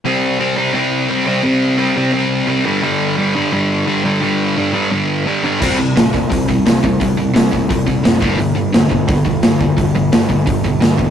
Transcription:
<<
  \new Staff \with { instrumentName = "Distorted electric guitar" } { \clef bass \time 4/4 \key c \lydian \tempo 4 = 173 <c g c'>4 <c g c'>8 <c g c'>8 <c g c'>4 <c g c'>8 <c g c'>8 | <c g c'>4 <c g c'>8 <c g c'>8 <c g c'>4 <c g c'>8 <g, d g>8 | <g, d g>4 <g, d g>8 <g, d g>8 <g, d g>4 <g, d g>8 <g, d g>8 | <g, d g>4 <g, d g>8 <g, d g>8 <g, d g>4 <g, d g>8 <g, d g>8 |
<c g c'>8 <c g>8 <c g>8 <c g>8 <c g>8 <c g>8 <c g>8 <c g>8 | <c g>8 <c g>8 <c g>8 <c g>8 <c g>8 <c g>8 <c g>8 <g, d g>8 | <g, d>8 <g, d>8 <g, d>8 <g, d>8 <g, d>8 <g, d>8 <g, d>8 <g, d>8 | <g, d>8 <g, d>8 <g, d>8 <g, d>8 <g, d>8 <g, d>8 <g, d>8 <g, d>8 | }
  \new Staff \with { instrumentName = "Picked electric bass" } { \clef bass \time 4/4 \key c \lydian r1 | r1 | r1 | r1 |
c,4 a,,8 c,8 c,4 c,8 c,8 | c,8 c,8 c,8 c,8 c,8 c,8 fis,,8 g,,8 | g,,4 e,,8 g,,8 g,,4 g,,8 g,,8 | g,,8 g,,8 g,,8 g,,8 g,,8 g,,8 g,,4 | }
  \new DrumStaff \with { instrumentName = "Drums" } \drummode { \time 4/4 r4 r4 r4 r4 | r4 r4 r4 r4 | r4 r4 r4 r4 | r4 r4 r4 r4 |
<cymc bd>4 <hho sn>8 bd8 <hho bd>8 bd8 <hho sn>8 bd8 | <hho bd>4 <hho sn>8 bd8 <hho bd>8 bd8 <hho sn>8 bd8 | hho4 <hho sn>8 bd8 <hho bd>8 bd8 <hho sn>8 bd8 | <hho bd>4 <hho sn>8 bd8 <hho bd>8 bd8 <hho sn>8 bd8 | }
>>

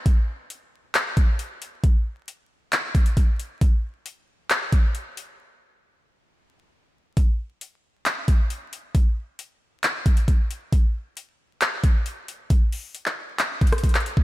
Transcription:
\new DrumStaff \with { instrumentName = "Drums" } \drummode { \time 4/4 \tempo 4 = 135 <hh bd>4 hh4 <hc hh>8 <hh bd>8 hh8 hh8 | <hh bd>4 hh4 <hc hh>8 <hh bd>16 hh16 <hh bd>8 hh8 | <hh bd>4 hh4 <hc hh>8 <hh bd>8 hh8 hh8 | r4 r4 r4 r4 |
<hh bd>4 hh4 <hc hh>8 <hh bd>8 hh8 hh8 | <hh bd>4 hh4 <hc hh>8 <hh bd>16 hh16 <hh bd>8 hh8 | <hh bd>4 hh4 <hc hh>8 <hh bd>8 hh8 hh8 | <hh bd>8 hho8 hh16 hc8. <hc hh>8 <hh bd>32 hh32 <hh ss>32 hh32 <hh bd>32 hh32 <hc hh>32 hh32 hh16 bd16 | }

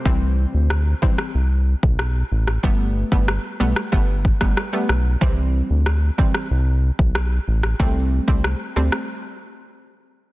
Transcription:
<<
  \new Staff \with { instrumentName = "Synth pluck" } { \time 4/4 \key c \major \tempo 4 = 93 <e g c'>4 r8 <e g c'>16 r2 r16 | <g a b>8. <g a b>16 r8 <g a b>16 r16 <g a b>16 r8 <g a b>16 r16 <g a b>16 r8 | <e g c'>4 r8 <e g c'>16 r2 r16 | <g a c'>8. <g a c'>16 r8 <g a c'>16 r2 r16 | }
  \new Staff \with { instrumentName = "Analog synth bass" } { \clef bass \time 4/4 \key c \major c,8. d,8. r8 c,8. b,,8. a,,8 | g,,8. g,,8 r16 b,,16 r16 g,,8. g,,16 r8 b,,8 | c,8. d,8. r8 c,8. b,,8. a,,8 | c,8. c,8 r16 d,16 r2 r16 | }
  \new DrumStaff \with { instrumentName = "Drums" } \drummode { \time 4/4 bd4 ss8 bd16 ss16 r8. bd16 ss8. ss16 | bd8. bd16 ss8. ss16 bd8 bd16 <bd ss>16 ss8 ss8 | bd4 ss8 bd16 ss16 r8. bd16 ss8. ss16 | bd8. bd16 ss8. ss16 r4 r4 | }
>>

